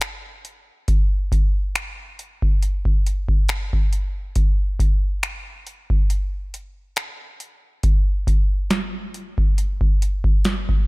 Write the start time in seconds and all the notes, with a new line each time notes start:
0.01 finger snap, closed hi-hat
0.45 closed hi-hat
0.88 kick, closed hi-hat
1.32 kick, closed hi-hat
1.75 finger snap, closed hi-hat
2.19 closed hi-hat
2.42 kick
2.63 closed hi-hat
2.85 kick
3.07 closed hi-hat
3.29 kick
3.49 finger snap, closed hi-hat
3.73 kick
3.93 closed hi-hat
4.36 kick, closed hi-hat
4.80 kick, closed hi-hat
5.23 finger snap, closed hi-hat
5.67 closed hi-hat
5.90 kick
6.10 closed hi-hat
6.54 closed hi-hat
6.96 finger snap, closed hi-hat
7.40 closed hi-hat
7.83 kick, closed hi-hat
8.27 kick, closed hi-hat
8.70 snare, closed hi-hat
9.14 closed hi-hat
9.38 kick
9.58 closed hi-hat
9.81 kick
10.02 closed hi-hat
10.24 kick
10.45 snare, closed hi-hat
10.69 kick